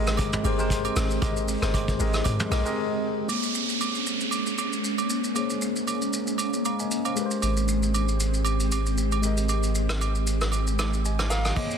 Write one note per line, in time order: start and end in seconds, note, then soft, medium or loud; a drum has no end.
0.00 0.38 G#1 loud
0.00 0.44 G#3 loud
0.00 3.25 G#3 medium
0.00 3.25 C4 medium
0.00 0.45 G4 medium
0.00 3.25 G4 medium
0.00 0.46 A#4 medium
0.00 0.46 C5 loud
0.00 1.24 D#5 loud
0.07 cross-stick medium
0.07 shaker medium
0.17 kick loud
0.17 hi-hat pedal medium
0.17 high agogo medium
0.17 shaker medium
0.33 mid tom loud
0.33 shaker medium
0.44 0.89 G1 medium
0.44 0.56 G#3 medium
0.44 0.56 G4 medium
0.44 0.56 A#4 medium
0.44 0.57 C5 loud
0.44 open hi-hat medium
0.44 high agogo medium
0.44 shaker loud
0.58 1.10 G#3 medium
0.58 1.11 G4 medium
0.58 1.11 A#4 medium
0.58 1.11 C5 loud
0.58 shaker medium
0.70 kick medium
0.70 hi-hat pedal medium
0.70 shaker medium
0.85 high agogo medium
0.85 shaker soft
0.96 1.19 G#1 loud
0.96 cross-stick loud
0.96 open hi-hat medium
0.96 shaker loud
1.11 shaker medium
1.22 1.57 G#1 loud
1.22 1.53 G#3 medium
1.22 1.54 G4 medium
1.22 1.54 A#4 medium
1.22 1.55 D#5 loud
1.22 kick loud
1.22 hi-hat pedal medium
1.22 high agogo medium
1.22 shaker medium
1.37 shaker medium
1.48 open hi-hat medium
1.48 shaker loud
1.62 1.95 G1 medium
1.62 1.92 G#3 medium
1.62 1.93 G4 medium
1.62 1.93 A#4 medium
1.62 1.93 C5 loud
1.62 cross-stick loud
1.62 shaker medium
1.74 kick loud
1.74 hi-hat pedal medium
1.74 high agogo medium
1.74 shaker medium
1.88 kick medium
1.88 shaker soft
1.99 2.22 G#1 loud
1.99 2.42 G#3 medium
1.99 2.42 G4 medium
1.99 2.42 A#4 medium
1.99 2.43 D#5 loud
1.99 open hi-hat medium
1.99 shaker medium
2.14 cross-stick medium
2.14 shaker medium
2.24 2.38 G#2 loud
2.24 kick loud
2.24 hi-hat pedal medium
2.24 high agogo medium
2.24 shaker medium
2.40 mid tom loud
2.40 shaker medium
2.51 2.64 A#1 medium
2.51 2.62 G#3 medium
2.51 2.63 G4 medium
2.51 2.63 A#4 medium
2.51 2.64 D#5 loud
2.51 cross-stick loud
2.51 open hi-hat medium
2.51 high agogo medium
2.51 shaker loud
2.65 3.17 G#3 loud
2.65 3.17 G4 medium
2.65 3.18 A#4 medium
2.65 3.18 D#5 loud
2.65 shaker medium
3.28 11.53 G#3 medium
3.28 5.31 A#3 medium
3.28 7.13 A#3 medium
3.28 7.13 C#4 medium
3.28 5.32 G#4 medium
3.28 downlifter medium
3.28 high agogo medium
3.28 shaker medium
3.32 5.33 C#5 medium
3.43 shaker medium
3.55 shaker medium
3.69 shaker soft
3.81 high agogo medium
3.81 shaker medium
3.95 shaker soft
4.06 shaker medium
4.20 shaker soft
4.31 high agogo medium
4.31 shaker medium
4.46 shaker medium
4.58 high agogo medium
4.58 shaker medium
4.73 shaker soft
4.84 shaker medium
4.98 high agogo medium
4.98 shaker soft
5.10 shaker medium
5.24 shaker medium
5.34 7.12 A#3 medium
5.34 7.13 G#4 medium
5.34 6.63 C5 medium
5.34 high agogo medium
5.34 shaker medium
5.39 6.64 C#5 medium
5.50 shaker soft
5.62 shaker medium
5.76 shaker soft
5.87 high agogo medium
5.87 shaker medium
6.02 shaker soft
6.13 shaker medium
6.27 shaker soft
6.38 high agogo medium
6.38 shaker medium
6.53 shaker medium
6.65 6.79 F5 soft
6.65 6.79 A#5 medium
6.65 high agogo medium
6.65 shaker medium
6.79 7.04 D#5 medium
6.79 7.04 G#5 medium
6.79 shaker soft
6.91 shaker medium
7.05 7.25 C5 medium
7.05 7.30 F5 medium
7.05 high agogo medium
7.05 shaker soft
7.16 9.19 G#3 medium
7.16 11.53 C4 medium
7.16 9.20 G4 medium
7.16 11.52 G4 medium
7.16 9.20 A#4 medium
7.16 shaker medium
7.20 7.25 B4 medium
7.26 9.24 C5 medium
7.31 shaker medium
7.42 11.52 G#1 medium
7.42 high agogo medium
7.42 shaker medium
7.57 shaker medium
7.68 shaker medium
7.83 shaker soft
7.94 high agogo medium
7.94 shaker medium
8.08 shaker soft
8.20 shaker medium
8.34 shaker soft
8.45 high agogo medium
8.45 shaker medium
8.60 shaker medium
8.72 high agogo medium
8.72 shaker medium
8.86 shaker soft
8.98 shaker medium
9.12 high agogo medium
9.12 shaker soft
9.22 11.26 G#3 medium
9.22 11.27 G4 medium
9.22 11.27 A#4 medium
9.22 shaker loud
9.26 11.03 D#5 medium
9.37 shaker medium
9.49 high agogo medium
9.49 shaker medium
9.63 shaker medium
9.75 shaker medium
9.89 cross-stick medium
9.89 shaker soft
10.01 high agogo medium
10.01 shaker medium
10.15 shaker soft
10.27 shaker medium
10.41 cross-stick medium
10.41 shaker soft
10.52 high agogo medium
10.52 shaker medium
10.67 shaker medium
10.79 cross-stick loud
10.79 high agogo medium
10.79 shaker medium
10.93 shaker soft
11.05 11.30 D#5 medium
11.05 11.30 G#5 medium
11.05 shaker medium
11.19 cross-stick medium
11.19 high agogo medium
11.19 shaker soft
11.30 11.57 F5 loud
11.30 11.44 A#5 medium
11.30 cross-stick loud
11.30 shaker loud
11.45 11.70 D#5 soft
11.45 11.70 G#5 medium
11.45 cross-stick loud
11.45 shaker medium
11.56 11.78 A#2 medium
11.56 11.78 G#3 medium
11.56 11.78 A#3 medium
11.56 11.78 C#4 medium
11.56 11.78 G#4 medium
11.56 11.78 A#4 medium
11.56 11.78 C5 medium
11.56 11.78 C#5 medium
11.56 11.78 D#5 loud
11.56 kick loud
11.56 crash medium
11.56 high agogo medium
11.71 shaker medium